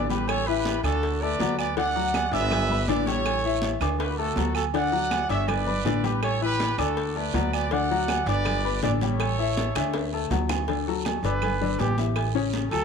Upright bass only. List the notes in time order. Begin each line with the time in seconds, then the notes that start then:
Already playing: A1
0.83 D2
1.39 D2
2.32 G1
2.88 A1
3.81 D2
4.36 D2
5.29 G1
5.85 A1
6.78 D2
7.34 D2
8.26 G1
8.82 A1
9.75 D2
10.30 D2
11.23 G1
11.79 A1
12.71 D2